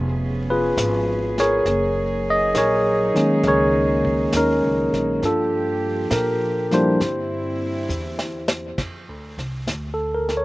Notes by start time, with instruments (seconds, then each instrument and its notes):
Already playing: upright bass F1, cello section F3 B3 C#4 G#4
0.50 tine electric piano F4 G#4 B4
0.77 upright bass G#1, snare, hi-hat pedal
1.38 tine electric piano G#4 A#4 C#5, snare
1.64 upright bass F#1, cello section F#3 A#3 D#4, brush sweep, snare
2.30 tine electric piano D#5
2.55 upright bass A#1, tine electric piano G#4 A#4 C#5, snare, hi-hat pedal
3.14 tine electric piano D#3 G#3 A#3 C#4, muted upright bass stroke, snare
3.43 upright bass C#2, tine electric piano G#4 A#4, brush sweep, snare
3.48 tine electric piano C#5
4.05 kick
4.32 upright bass D#2, tine electric piano C#4 D#4, snare, hi-hat pedal
4.37 tine electric piano A#4
4.62 upright bass C#2
4.92 upright bass A#1, snare
5.20 upright bass G2, cello section F3 G4, brush sweep, snare
5.25 tine electric piano D4 F4 A4
6.11 upright bass A#2, tine electric piano A#4, snare, hi-hat pedal
6.71 tine electric piano F3 G3 A#3 D4 E4 G4 C5, snare
6.99 upright bass G2, cello section D3 C4 E4, brush sweep, snare
7.89 upright bass E2, hi-hat pedal
8.19 snare
8.48 snare
8.78 upright bass F2, brush sweep, kick, snare, ride
9.08 upright bass D2
9.38 upright bass C2, snare
9.67 upright bass D2, snare, hi-hat pedal
9.94 tine electric piano A4
10.15 tine electric piano A#4
10.29 snare
10.37 tine electric piano C#5